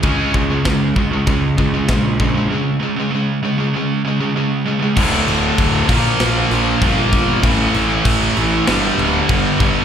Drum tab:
CC |--------|--------|xxxxxxxx|xxxxxxxx|
RD |b-b-b-b-|--------|--------|--------|
SD |--o---o-|--------|----o---|----o---|
BD |oooooooo|--------|o-oo--oo|o-o---oo|